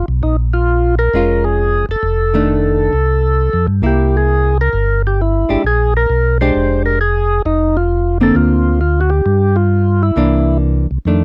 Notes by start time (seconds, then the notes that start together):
0.08 B1
0.23 A#1 D#4
0.54 F4
0.99 A#4
1.14 F1 G#3 C#4 F4
1.44 G#4
1.89 F1 A4
2.03 F1
2.34 D#3 A3 D4
2.93 C2
3.53 F2
3.67 G2
3.82 C2 A#3 E4
3.86 G4
4.17 G#4
4.61 A#4
4.73 G1
5.07 G4
5.21 E4
5.49 G1 G#3 D4 G4
5.64 A#1 G#4
5.97 A#4
6.10 B1
6.41 G#3 D4 G4 C5
6.55 F1
6.86 A#4
7.01 G#4
7.45 F1 D#4
7.77 F4
8.21 D3 A#3 C4 A4
8.35 D2 F4
8.81 F4
9.01 F#4
9.10 G4
9.26 G2
9.56 F4
10.03 E4
10.16 C2 E3 A#3 D4
10.91 C2
11.05 F2 D#3 A3 D4